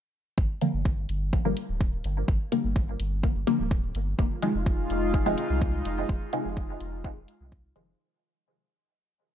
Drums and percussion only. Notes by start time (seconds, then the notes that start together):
0.38 kick
0.61 closed hi-hat
0.85 kick
1.09 closed hi-hat
1.33 kick
1.57 closed hi-hat
1.81 kick
2.04 closed hi-hat
2.28 kick
2.52 closed hi-hat
2.76 kick
3.00 closed hi-hat
3.23 kick
3.47 closed hi-hat
3.71 kick
3.95 closed hi-hat
4.19 kick
4.42 closed hi-hat
4.66 kick
4.90 closed hi-hat
5.14 kick
5.38 closed hi-hat
5.62 kick
5.85 closed hi-hat
6.09 kick
6.33 closed hi-hat
6.57 kick
6.81 closed hi-hat
7.04 kick
7.28 closed hi-hat
7.52 kick
7.76 closed hi-hat